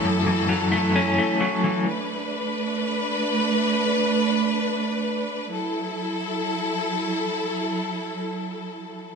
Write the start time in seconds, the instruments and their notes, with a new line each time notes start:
Already playing: clean electric guitar E3 F#3 A3 C#4, string section F#3 E4 A4
0.04 clean electric guitar F#2
0.26 clean electric guitar E3
0.49 clean electric guitar F#3
0.72 clean electric guitar A3
0.96 clean electric guitar C#4
1.18 clean electric guitar A3
1.41 clean electric guitar F#3
1.64 clean electric guitar E3
1.87 string section A3 D4 B4
5.53 string section F#3 E4 A4